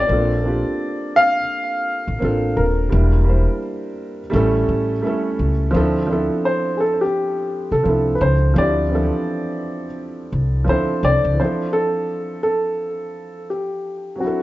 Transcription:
Already playing: G3 C4 D#4 F4 C5
0.00 D5
0.07 A#1 A#3 C4 D4
0.11 F4 A4
0.42 A#3 C4 D4
0.47 F4 G4
1.16 F5
2.07 A1
2.19 A1 A#3 C4 D4
2.23 F4 A4
2.57 D#1 A#4
2.89 E1 G3 A#3 D4
2.94 E4 A#4
3.24 G3 A#3 D4 E4
3.30 C5
4.30 A1 G3 A3 C#4
4.34 E4 A4
4.69 A1
5.01 G3 A3 C#4
5.05 E4 A4
5.39 C#2
5.71 D2 F3 C4 D4
5.76 E4 A4
6.07 F3 C4 D4 E4
6.13 A4
6.45 C5
6.77 G#4 A4
7.01 G4
7.72 C2 A4
7.84 C2 F3 C4 D4
7.88 E4 A4
8.15 B4
8.21 C#2 C5
8.54 D2 F3 C4 D4
8.58 E4 G4 D5
8.89 E3 C4 D4
8.93 F3 E4 A4
10.32 C2
10.64 D2 F3 C4 D4
10.69 E4 A4 C5
11.03 C2 D5
11.24 C#2
11.33 E3 C4
11.39 F3 D4 E4 C5
11.45 A4
11.73 A4
12.43 A4
13.50 G4
14.16 F#3 C4
14.20 D4 E4 F#4
14.27 A4

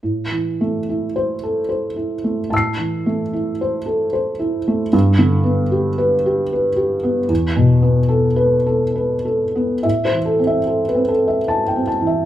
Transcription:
0.03 A2
0.32 E3
0.61 A3
0.89 E4
1.16 C5
1.43 A4
1.69 C5
1.96 E4
2.24 A3
2.50 A2 A5 E6
2.57 C7
2.78 E3
3.06 A3
3.33 E4
3.61 C5
3.86 A4
4.13 C5
4.39 E4
4.68 A3
4.93 G2
5.19 D3
5.44 B3
5.71 G4
5.98 B4
6.26 G4
6.53 B4
6.76 G4
7.03 B3
7.29 E2
7.56 B2
7.82 B3
8.09 A4
8.36 B4
8.66 A4
8.95 B4
9.25 A4
9.55 B3
9.83 A2 E5
10.05 C5
10.12 E3
10.26 A4
10.39 C4
10.47 E5
10.67 A4
10.88 B4
10.95 C4
11.08 A4
11.28 E5
11.48 A5
11.68 G5
11.76 C4
11.87 A5
12.01 E3
12.07 E5

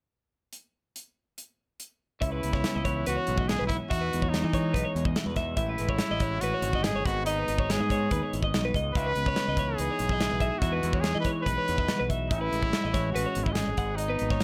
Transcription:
0.53 closed hi-hat
0.96 closed hi-hat
1.38 closed hi-hat
1.80 closed hi-hat
2.21 C#2 C#3 C#4 E4 E5, kick, closed hi-hat
2.32 B4
2.43 C#2 B3, closed hi-hat
2.53 C#5, kick, snare
2.64 C#4, snare, closed hi-hat
2.75 C#2 D#5
2.85 E3 B3 C#5, kick, closed hi-hat
3.06 C#2 C#4 F#4 B4, closed hi-hat
3.17 C#5
3.27 B1 G#2 B3, closed hi-hat
3.38 D#5, kick
3.48 G#4, snare, closed hi-hat
3.59 B1 B4
3.67 C#4 E4 E5, kick, closed hi-hat
3.90 E2 D#4 F#4 E5, kick, closed hi-hat
4.01 B4
4.13 E2 G#3, closed hi-hat
4.22 C#5, kick
4.29 D#4
4.34 D#4, snare, closed hi-hat
4.43 E3 D#5
4.53 E3 G#3 C#5, kick, closed hi-hat
4.73 B1 D#4 B4, kick, closed hi-hat
4.85 C#5
4.95 E2 B2 G#3, closed hi-hat
5.05 D#5, kick
5.16 E4, snare, closed hi-hat
5.26 E2 F#4 B4
5.36 D#4 E5, kick, snare, closed hi-hat
5.57 A1 A2 B3 E4 E5, kick, closed hi-hat
5.67 C#4 B4
5.78 A1 G#3, closed hi-hat
5.89 C#5, kick
5.98 C#4, snare, closed hi-hat
6.11 A1 D#5
6.20 E3 G#3 C#5, kick, closed hi-hat
6.41 A1 C#4 F#4 B4, closed hi-hat
6.54 C#5
6.62 G#1 B2, closed hi-hat
6.73 D#5, kick
6.83 A2 G#4, snare, closed hi-hat
6.95 G#1 C#5
7.06 G#1 G#2 G#3 B3 D#4 F#4 F#5, kick, snare, closed hi-hat
7.25 B3 D#4 D#5, closed hi-hat
7.38 B4
7.48 G#1 D#4, closed hi-hat
7.58 C#5, kick
7.69 G#3 B3 G#4, snare, closed hi-hat
7.80 G#2 D#5
7.90 D#4 C#5, kick, closed hi-hat
8.11 D#2 D#3 B3 B4, kick, closed hi-hat
8.23 C#5
8.33 G#1 E4, closed hi-hat
8.43 F#4 D#5, kick
8.54 B1 D#4, snare, closed hi-hat
8.65 B4
8.74 C#2 G#2 D#4 D#5, kick, closed hi-hat
8.93 C#2 C#3 D#4 B4 E5, kick, closed hi-hat
9.06 B4
9.15 C#2 B3, closed hi-hat
9.26 C#5, kick
9.36 D#4, snare, closed hi-hat
9.48 C#2 D#5
9.57 E3 B3 C#5, kick, closed hi-hat
9.76 C#2 D#4 G#4, closed hi-hat
9.80 B4
9.90 C#5
9.98 B1 G#2 B3, closed hi-hat
10.09 D#5, kick
10.20 E4, snare, closed hi-hat
10.32 B1 B4
10.40 D#4 E5, kick, closed hi-hat
10.59 E2 F#4 E5, kick, closed hi-hat
10.63 E2 E3 G#3 D#4
10.72 B4
10.83 E2 G#3, closed hi-hat
10.93 C#5, kick
11.00 D#4 G#4, snare, closed hi-hat
11.15 E3 D#5
11.20 B4
11.24 E3 G#3 C#5, kick, closed hi-hat
11.42 B4
11.46 B1 D#4 B4, kick, closed hi-hat
11.58 C#5
11.67 E2 B2 G#3, closed hi-hat
11.78 D#5, kick
11.88 F#4, snare, closed hi-hat
11.99 B1 B4
12.09 D#4 E5, kick, closed hi-hat
12.29 A1 A2 C#4 E4 E5, kick, closed hi-hat
12.41 B4
12.52 A1 G#3, closed hi-hat
12.63 C#5, kick
12.73 C#4, snare, closed hi-hat
12.84 A1 D#5
12.93 E3 G#3 C#5, kick, snare, closed hi-hat
13.12 A1 C#4 F#4 B4, closed hi-hat
13.26 C#5
13.35 G#1 B2, closed hi-hat
13.43 E4, kick
13.47 D#5
13.52 A2 G#4, snare, closed hi-hat
13.68 G#1 C#5
13.77 G#1 G#2 D#4 F#5, kick, closed hi-hat
13.96 G#3 D#4 D#5, closed hi-hat
14.08 B3 B4
14.19 G#1 D#4, closed hi-hat
14.30 C#5, kick, snare
14.40 G#3, snare, closed hi-hat

